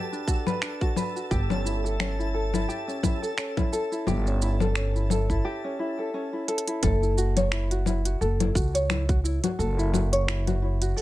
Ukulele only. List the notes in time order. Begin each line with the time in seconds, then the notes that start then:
Already playing: D4 F#4 G4 B4
0.12 D4
0.27 F#4
0.47 B4
0.62 D4
0.81 F#4
0.96 B4
1.16 F#4
1.31 G4
1.50 C#4
1.65 E4
1.84 A4
1.99 C#4
2.19 E4
2.34 A4
2.53 E4
2.68 G4
2.88 C#4
3.03 E4
3.22 A4
3.38 C#4
3.57 E4
3.73 A4
3.92 E4
4.07 G4
4.27 C#4
4.42 E4
4.61 A4
4.76 C#4
4.95 E4
5.10 A4
5.30 E4
5.45 G4
5.64 C#4
5.79 E4
5.99 A4
6.14 C#4
6.33 E4
6.48 A4
6.67 E4
6.83 A4
7.02 E4
7.17 F#4
7.37 C#5
7.52 E4
7.71 F#4
7.86 E4
8.05 F#4
8.21 A4
8.40 E4
8.55 F#4
8.74 C#5
8.90 E4
9.09 F#4
9.24 E4
9.43 F#4
9.59 A4
9.78 E4
9.93 F#4
10.13 C#5
10.28 E4
10.47 F#4
10.62 E4
10.82 F#4
10.96 A4